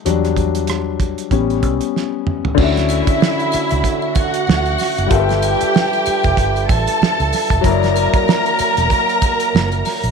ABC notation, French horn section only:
X:1
M:4/4
L:1/8
Q:"Swing 16ths" 1/4=95
K:D
V:1 name="French horn section"
z8 | [D,A,CFe]8 | [G,D=FAB]8 | [F,^A,]8 |]